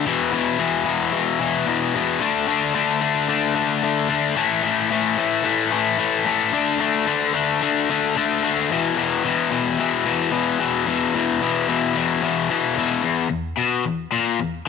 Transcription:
0.06 E2 B2 E3
0.32 E2 B2 E3
0.59 E2 B2 E3
0.85 E2 B2 E3
1.13 E2 B2 E3
1.40 E2 B2 E3
1.67 E2 B2 E3
1.94 E2 B2 E3
2.20 D3 A3 D4
2.47 D3 A3 D4
2.75 D3 A3 D4
3.01 D3 A3 D4
3.29 D3 A3 D4
3.55 D3 A3 D4
3.83 D3 A3 D4
4.09 D3 A3 D4
4.37 A2 E3 A3
4.63 A2 E3 A3
4.91 A2 E3 A3
5.18 A2 E3 A3
5.44 A2 E3 A3
5.72 A2 E3 A3
5.98 A2 E3 A3
6.25 A2 E3 A3
6.53 D3 A3 D4
6.80 D3 A3 D4
7.07 D3 A3 D4
7.34 D3 A3 D4
7.62 D3 A3 D4
7.89 D3 A3 D4
8.16 D3 A3 D4
8.43 D3 A3 D4
8.72 E2 B2 E3
8.97 E2 B2 E3
9.25 E2 B2 E3
9.51 E2 B2 E3
9.79 E2 B2 E3
10.05 E2 B2 E3
10.32 E2 B2 E3
10.59 E2 B2 E3
10.86 E2 B2 E3
11.14 E2 B2 E3
11.41 E2 B2 E3
11.68 E2 B2 E3
11.95 E2 B2 E3
12.22 E2 B2 E3
12.50 E2 B2 E3
12.77 E2 B2 E3
13.03 E2
13.30 E2
13.57 B2
13.84 E2
14.12 A#2
14.39 E2

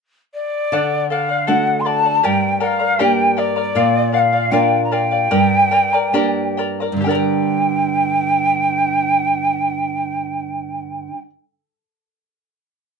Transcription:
0.34 D5
0.72 D3 A4 D5 F#5
1.10 A4 D5 F5 F#5
1.29 D5 F#5
1.47 A3 D4 F#4 A4 D5 F#5
1.80 C6
1.85 A4 D5 F#5 A5
2.04 D5 F#5
2.23 G2 G4 A#4 D5 G5 A#5
2.60 A#4 D5 F#5 G5 A#5
2.66 F5
2.79 A#4 D5 A#5
2.99 A#3 D4 G4 A#4 D5 G5 A#5
3.37 A#4 D5 G5 A#5
3.56 A#4 D5 A#5
3.75 A#2 A#4 D5 F5
4.12 A#4 D5 F5 F#5
4.19 F5
4.33 D5 F5
4.51 A#3 D4 F4 A#4 D5 F5 G5
4.84 A#5
4.91 A#4 D5 F5 G5
5.11 D5 F5
5.31 G2 G4 A#4 D5 G5 A#5
5.71 A#4 D5 G5 A#5
5.93 A#4 D5 A#5
6.13 A#3 D4 G4 A#4 D5 G5 A#5
6.57 A#4 D5 G5 A#5
6.80 A#4 D5 A#5
6.92 G2
6.97 D3
7.01 G3 G4 G5
7.06 D4 A#4 D5 G5
7.10 A#4 A#5
7.15 D5

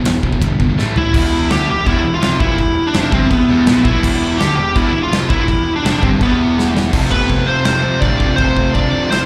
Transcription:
0.04 E1 E2 B2, snare, ride bell
0.23 E1 E2 B2, kick
0.32 E2 B2, kick
0.41 G1 E2 B2, kick, ride bell
0.60 E2 B2, kick
0.69 E2 B2
0.77 A1 A2 E3 A3, snare
0.96 A1 A2 E3 E4, floor tom
1.06 A2 E3
1.14 E1 E2 E3 B3 E4 G4, kick, crash, china
1.50 D2 D3 G4, snare, china
1.68 E1 E2 G4
1.86 E1 E2 E4, kick, china
2.05 E1 E2
2.15 F4
2.22 F1 F2, snare, china
2.40 A#1 A#2 E4, kick
2.58 E1 E2, kick, china
2.87 D4
2.94 F1 F2, snare, china
3.12 G1 G2 C4, kick
3.31 E1 E2 B3, kick, china
3.48 E1 E2
3.66 A#1 A#2, snare, china
3.85 B1 B2 E4, kick
4.03 E1 E2 D4, kick, china, crash
4.39 D2 D3 G4, snare, china
4.56 E1 E2 G4
4.75 E1 E2 E4, kick, china
4.93 E1 E2
5.03 F4
5.11 F1 F2, snare, china
5.29 A#1 A#2 E4, kick
5.48 E1 E2, kick, china
5.76 D4
5.83 F1 F2, snare, china
6.02 G1 G2 C4, kick
6.20 E1 E2 B3, kick, china
6.59 snare
6.77 snare
6.91 F1 F2 C3 F3 A3 G4 A4, kick, crash, china
6.95 F3 C4 F4 A4
7.11 F1 B3 B4, kick
7.30 F1, kick, china
7.45 F1 C4 C5
7.63 F1 C4 C5, snare, china
7.83 F2 F3 A3 C4 F4 A4
8.00 A1 F3 A3 C4 D4 F4 A4 D5, kick, china
8.19 F1 F2 C3 F3, kick
8.36 F1 F2 C3 A3 C4 F4 C5, kick, china
8.40 F3 A4
8.57 F1, kick
8.72 F1 D4 D5, kick, china
8.92 F1
9.10 F1 C4 C5, snare, china

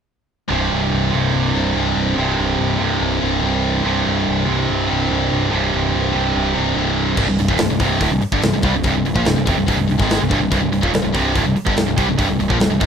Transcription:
0.48 C1 C2 G2 C3
0.72 C1
0.92 C1
1.11 C1 C2 G2 C3
1.33 C1
1.53 C1 C2 G2 C3
1.73 C1 C2 G2 C3
1.95 C1
2.15 C1 C2 G2
2.19 C3
2.38 C1
2.58 C1
2.77 C1 C2 G2 C3
3.00 C1
3.19 C1 C2 G2 C3
3.41 C1 C2 G2 C3
3.82 C1 C2 G2
3.86 C3
4.06 C1
4.28 C1
4.45 C1 C2 G2 C3
4.70 C1
4.87 C1 C2 G2 C3
5.08 C1 C2 G2 C3
5.31 C1
5.49 C1 C2 G2
5.54 C3
5.74 C1
5.94 C1
6.12 C1 C2 G2 C3
6.35 C1
6.54 C1 G2 C3
6.58 C2
6.74 C1 C2 G2
6.78 C3
7.17 C1 C2 G2, kick, crash
7.28 C1 C2 G2
7.38 C1 C2 G2, open hi-hat
7.48 D#1 D#2 A#2, kick
7.58 C1 C2 G2, snare, open hi-hat
7.70 C1 C2 G2
7.79 C1 C2 G2 C3, kick, open hi-hat
8.01 D1 D2 A2, kick, open hi-hat
8.12 C1 C2 G2
8.21 muted distorted electric guitar stroke, muted picked electric bass stroke, open hi-hat
8.32 G1 G2 D3, kick
8.42 C1 C2 G2, snare, open hi-hat
8.53 C1 C2 G2
8.62 C2 C3 G3, kick, open hi-hat
8.73 C1 C2 G2
8.83 C1 C2 G2, kick, open hi-hat
8.95 C1 C2 G2
9.05 C1 C2 G2, open hi-hat
9.14 A#1 A#2 F3, kick
9.25 C1 C2 G2, snare, open hi-hat
9.36 C1 C2 G2
9.45 F1 F2 C3, kick, open hi-hat
9.57 C1 C2 G2
9.66 C1 C2 G2, kick, open hi-hat
9.76 C1 C2 G2
9.87 C1 C2 G2, open hi-hat
9.98 G#1 G#2 D#3 G#3, kick, snare
10.10 snare, open hi-hat
10.19 C1 C2 G2
10.29 C1 C2 G2, kick, open hi-hat
10.40 C1 C2 G2
10.51 C1 C2 G2, kick, open hi-hat
10.61 C1 C2 G2
10.72 C1 C2 G2, open hi-hat
10.81 D#1 D#2 A#2, kick
10.93 C1 C2 G2, snare, open hi-hat
11.02 C1 C2 G2
11.13 C1 C2 G2 C3, kick, open hi-hat
11.35 D1 D2 A2, kick, open hi-hat
11.46 C1 C2 G2
11.56 muted distorted electric guitar stroke, muted picked electric bass stroke, open hi-hat
11.66 G1 G2 D3, kick
11.77 C1 C2 G2, snare, open hi-hat
11.88 C1 C2 G2
11.98 C2 C3 G3, kick, open hi-hat
12.08 C1 C2 G2
12.19 C1 C2 G2, kick, open hi-hat
12.29 C1 C2 G2
12.39 C1 C2 G2, open hi-hat
12.50 A#1 A#2 F3, kick
12.60 C1 C2 G2, snare, open hi-hat
12.71 C1 C2 G2
12.80 F1 F2 C3, kick, open hi-hat

